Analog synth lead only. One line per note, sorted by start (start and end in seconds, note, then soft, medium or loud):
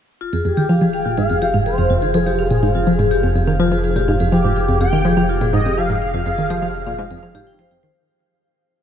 0.45 0.90 G4 medium
0.94 1.16 G5 loud
1.18 1.63 F5 loud
1.66 2.16 C5 medium
2.15 3.12 G#4 medium
4.32 4.77 G4 medium
4.81 5.26 G5 loud
5.53 5.79 D#5 loud
5.78 7.47 F5 loud